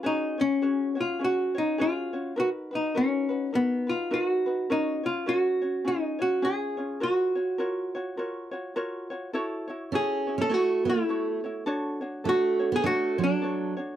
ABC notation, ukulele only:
X:1
M:4/4
L:1/8
Q:"Swing" 1/4=103
K:F#
V:1 name="Ukulele"
[CFGc] [CFc] [CFGc] [CFc] [CFGc] [CFc] [CFGc] [CFc] | [DFAB] [DFB] [DFAB] [DFB] [DFAB] [DFB] [DFAB] [DFB] | [CFAc] [CFc] [CFAc] [CFc] [CEGc] [CEc] [CEGc] [CEc] | [EFAc] [EFc] [EFAc] [EFc] [EFAc] [EFc] [EFAc] [EFc] |
[K:F#m] [EFAc] [EFc] [EFAc] [EFc] [EFAc] [EFc] [EFAc] [EFc] | [DFAc] [DFc] [DFAc] [DFc] [DFAc] [DFc] [DFAc] [DFc] |]